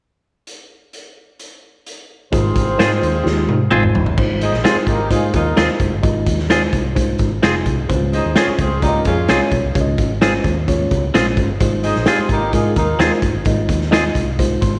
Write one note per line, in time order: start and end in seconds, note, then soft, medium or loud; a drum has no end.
0.47 closed hi-hat medium
0.93 closed hi-hat medium
1.39 closed hi-hat medium
1.86 closed hi-hat medium
2.31 2.52 G#1 loud
2.31 2.67 G#3 medium
2.31 3.91 C4 medium
2.31 2.67 D#4 medium
2.31 3.91 F4 medium
2.31 2.67 F4 medium
2.31 3.91 G#4 medium
2.31 3.91 C5 medium
2.31 2.67 C5 medium
2.31 kick medium
2.31 closed hi-hat medium
2.56 2.76 G#1 medium
2.56 kick medium
2.56 closed hi-hat medium
2.78 2.99 G#2 medium
2.78 3.13 G#3 medium
2.78 2.90 C4 medium
2.78 3.13 D#4 medium
2.78 3.13 F4 medium
2.78 2.90 F4 medium
2.78 2.90 G#4 medium
2.78 2.84 A#4 medium
2.78 snare loud
2.78 closed hi-hat medium
2.84 3.16 C5 medium
3.03 3.22 D#2 medium
3.03 closed hi-hat medium
3.23 3.45 D#2 loud
3.23 3.59 G#3 medium
3.23 3.59 D#4 medium
3.23 3.59 F4 medium
3.23 3.59 G4 medium
3.23 snare soft
3.48 3.68 G#2 medium
3.48 high tom medium
3.71 3.91 G#1 medium
3.71 4.06 G#3 medium
3.71 3.82 C4 medium
3.71 4.06 D#4 medium
3.71 4.06 F4 medium
3.71 3.82 F4 medium
3.71 3.83 G#4 medium
3.71 4.06 C5 medium
3.71 mid tom medium
3.83 mid tom medium
3.94 4.14 G1 medium
3.94 floor tom medium
4.06 floor tom medium
4.18 4.48 G#1 medium
4.18 4.53 G#3 medium
4.18 4.53 D#4 medium
4.18 4.53 F4 medium
4.18 4.53 C5 medium
4.18 kick loud
4.18 crash medium
4.41 4.60 D#4 medium
4.41 4.60 G#4 medium
4.41 4.60 C5 medium
4.41 4.60 D#5 medium
4.41 closed hi-hat medium
4.52 4.62 A#1 medium
4.52 snare soft
4.64 4.99 G#3 medium
4.64 4.75 C4 medium
4.64 4.83 C4 medium
4.64 4.99 D#4 medium
4.64 4.99 F4 medium
4.64 4.83 F4 medium
4.64 4.75 F4 medium
4.64 4.70 G4 medium
4.64 4.83 G#4 medium
4.64 4.76 G#4 medium
4.64 4.83 C5 medium
4.64 snare medium
4.64 closed hi-hat medium
4.69 5.02 G#4 medium
4.76 muted fingered electric bass stroke soft
4.87 5.07 G#1 medium
4.87 5.06 A#3 medium
4.87 5.06 D#4 medium
4.87 5.06 G4 medium
4.87 5.06 A#4 medium
4.87 kick medium
4.87 closed hi-hat medium
5.11 5.31 G#2 medium
5.11 5.46 G#3 medium
5.11 5.30 G#3 medium
5.11 5.46 D#4 medium
5.11 5.29 D#4 medium
5.11 5.29 F4 medium
5.11 5.46 F4 medium
5.11 5.30 G#4 medium
5.11 5.46 C5 medium
5.11 kick medium
5.11 closed hi-hat medium
5.33 5.54 D#2 medium
5.33 5.78 A#3 medium
5.33 5.78 D#4 medium
5.33 5.78 F4 medium
5.33 5.78 A#4 medium
5.33 kick medium
5.33 closed hi-hat medium
5.56 5.67 D#2 medium
5.56 5.92 G#3 medium
5.56 5.68 C4 medium
5.56 5.91 D#4 medium
5.56 5.92 F4 medium
5.56 5.68 F4 medium
5.56 5.68 G#4 medium
5.56 5.63 A#4 medium
5.56 snare medium
5.56 closed hi-hat medium
5.62 5.94 C5 medium
5.80 5.90 F#1 medium
5.80 kick medium
5.80 closed hi-hat medium
5.92 6.02 G1 medium
6.03 6.23 G#1 loud
6.03 6.38 G#3 medium
6.03 6.38 D#4 medium
6.03 6.38 F4 medium
6.03 6.38 D#5 medium
6.03 kick loud
6.03 closed hi-hat medium
6.27 6.66 D#2 medium
6.27 kick medium
6.27 closed hi-hat medium
6.39 snare soft
6.49 6.85 G#3 medium
6.49 6.61 C4 medium
6.49 6.85 D#4 medium
6.49 6.84 F4 medium
6.49 6.61 F4 medium
6.49 6.62 G#4 medium
6.49 6.85 C5 medium
6.49 snare loud
6.49 closed hi-hat medium
6.73 7.13 C2 medium
6.73 kick medium
6.73 closed hi-hat medium
6.95 7.31 G#3 medium
6.95 7.31 D#4 medium
6.95 7.31 F4 medium
6.95 7.31 C5 medium
6.95 kick medium
6.95 closed hi-hat medium
7.18 7.39 G#1 medium
7.18 kick medium
7.18 closed hi-hat medium
7.42 7.63 F1 medium
7.42 7.77 G#3 medium
7.42 7.54 C4 medium
7.42 7.77 D#4 medium
7.42 7.77 F4 medium
7.42 7.54 F4 medium
7.42 7.78 G#4 medium
7.42 7.54 G#4 medium
7.42 snare medium
7.42 closed hi-hat medium
7.66 7.86 C2 medium
7.66 kick medium
7.66 closed hi-hat medium
7.89 8.19 C#2 medium
7.89 8.24 G#3 medium
7.89 8.24 C#4 medium
7.89 7.95 E4 soft
7.89 8.24 C5 medium
7.89 kick medium
7.89 closed hi-hat medium
7.95 8.27 F4 medium
8.12 8.32 D#4 medium
8.12 8.31 G#4 medium
8.12 8.31 C5 medium
8.12 8.32 D#5 medium
8.12 closed hi-hat medium
8.25 8.35 D#2 medium
8.35 8.70 G#3 medium
8.35 8.47 C4 medium
8.35 8.54 C#4 medium
8.35 8.70 C#4 medium
8.35 8.70 F4 medium
8.35 8.54 F4 medium
8.35 8.47 F4 medium
8.35 8.54 G#4 medium
8.35 8.47 G#4 medium
8.35 8.70 C5 medium
8.35 8.54 C#5 medium
8.35 snare loud
8.35 closed hi-hat loud
8.48 muted fingered electric bass stroke soft
8.58 8.98 C#2 medium
8.58 8.78 C4 medium
8.58 8.77 F4 medium
8.58 8.77 G#4 medium
8.58 8.78 C5 loud
8.58 kick medium
8.58 closed hi-hat medium
8.82 9.17 G#3 medium
8.82 9.01 A#3 medium
8.82 9.17 C#4 medium
8.82 9.01 D#4 medium
8.82 9.17 F4 medium
8.82 9.01 G4 medium
8.82 9.01 A#4 medium
8.82 8.88 D5 medium
8.82 kick medium
8.82 closed hi-hat medium
8.88 9.20 D#5 medium
9.05 9.25 F2 medium
9.05 9.50 G#3 medium
9.05 9.50 C#4 medium
9.05 9.49 F4 medium
9.05 9.50 G#4 medium
9.05 kick medium
9.05 closed hi-hat medium
9.28 9.39 C2 medium
9.28 9.64 G#3 medium
9.28 9.40 C4 medium
9.28 9.63 C#4 medium
9.28 9.63 F4 medium
9.28 9.40 F4 medium
9.28 9.40 G#4 medium
9.28 9.64 C#5 medium
9.28 snare medium
9.28 closed hi-hat medium
9.51 9.62 B1 medium
9.51 kick medium
9.51 closed hi-hat medium
9.64 9.74 C2 medium
9.75 9.95 C#2 loud
9.75 10.10 G#3 medium
9.75 10.10 C#4 medium
9.75 10.10 F4 medium
9.75 9.81 C#5 medium
9.75 kick medium
9.75 closed hi-hat medium
9.81 10.13 D#5 medium
9.98 10.38 G#1 medium
9.98 kick medium
9.98 closed hi-hat medium
10.21 10.56 G#3 medium
10.21 10.32 C4 medium
10.21 10.56 C#4 medium
10.21 10.56 F4 medium
10.21 10.33 F4 medium
10.21 10.33 G#4 medium
10.21 10.56 C5 medium
10.21 snare loud
10.21 closed hi-hat medium
10.44 10.84 D#2 medium
10.44 kick medium
10.44 closed hi-hat medium
10.68 11.03 G#3 medium
10.68 11.02 C#4 medium
10.68 11.03 F4 medium
10.68 11.03 C#5 medium
10.68 kick medium
10.68 closed hi-hat medium
10.91 11.11 C#2 medium
10.91 kick medium
10.91 closed hi-hat medium
11.14 11.35 A#1 medium
11.14 11.49 G#3 medium
11.14 11.25 C4 medium
11.14 11.49 C#4 medium
11.14 11.49 F4 medium
11.14 11.25 F4 medium
11.14 11.25 G#4 medium
11.14 11.49 C5 medium
11.14 snare medium
11.14 closed hi-hat medium
11.37 11.57 G1 medium
11.37 kick medium
11.37 closed hi-hat medium
11.60 11.90 G#1 medium
11.60 11.95 G#3 medium
11.60 11.95 D#4 medium
11.60 11.95 F4 medium
11.60 11.95 C5 medium
11.60 kick medium
11.60 closed hi-hat medium
11.83 12.02 D#4 medium
11.83 12.02 G#4 medium
11.83 12.02 C5 medium
11.83 12.02 D#5 medium
11.83 closed hi-hat medium
11.96 12.05 A#1 medium
11.96 snare soft
12.06 12.41 G#3 medium
12.06 12.18 C4 medium
12.06 12.26 C4 medium
12.06 12.41 D#4 medium
12.06 12.41 F4 medium
12.06 12.26 F4 medium
12.06 12.18 F4 medium
12.06 12.41 G4 medium
12.06 12.26 G#4 medium
12.06 12.18 G#4 medium
12.06 12.26 C5 medium
12.06 snare loud
12.06 closed hi-hat medium
12.18 muted fingered electric bass stroke soft
12.29 12.49 G#1 medium
12.29 12.49 A#3 medium
12.29 12.49 D#4 medium
12.29 12.49 G4 medium
12.29 12.49 A#4 medium
12.29 kick medium
12.29 closed hi-hat medium
12.53 12.73 G#2 medium
12.53 12.88 G#3 medium
12.53 12.72 G#3 medium
12.53 12.88 D#4 medium
12.53 12.72 D#4 medium
12.53 12.72 F4 medium
12.53 12.88 F4 medium
12.53 12.72 G#4 medium
12.53 12.88 A#4 medium
12.53 kick medium
12.53 closed hi-hat medium
12.76 12.96 D#2 medium
12.76 13.20 A#3 medium
12.76 13.20 D#4 medium
12.76 13.20 F4 medium
12.76 13.20 A#4 medium
12.76 kick medium
12.76 closed hi-hat medium
12.99 13.09 D#2 medium
12.99 13.34 G#3 medium
12.99 13.10 C4 medium
12.99 13.34 D#4 medium
12.99 13.35 F4 medium
12.99 13.11 F4 medium
12.99 13.11 G#4 medium
12.99 13.35 C5 medium
12.99 snare medium
12.99 closed hi-hat medium
13.22 13.32 F#1 medium
13.22 kick medium
13.22 closed hi-hat medium
13.34 13.44 G1 medium
13.45 13.66 G#1 medium
13.45 13.81 G#3 medium
13.45 13.81 D#4 medium
13.45 13.81 F4 medium
13.45 13.81 D#5 medium
13.45 kick medium
13.45 closed hi-hat medium
13.69 14.09 D#2 medium
13.69 kick medium
13.69 closed hi-hat medium
13.81 snare soft
13.91 14.27 G#3 medium
13.91 14.03 C4 medium
13.91 14.26 D#4 medium
13.91 14.27 F4 medium
13.91 14.03 F4 medium
13.91 14.04 G#4 medium
13.91 14.27 D#5 medium
13.91 snare loud
13.91 closed hi-hat loud
14.15 14.55 C2 medium
14.15 kick medium
14.15 closed hi-hat medium
14.39 14.74 G#3 medium
14.39 14.73 D#4 medium
14.39 14.74 F4 medium
14.39 14.74 C5 medium
14.39 kick medium
14.39 closed hi-hat medium
14.62 14.79 G#1 medium
14.62 14.79 C6 medium
14.62 kick medium
14.62 closed hi-hat medium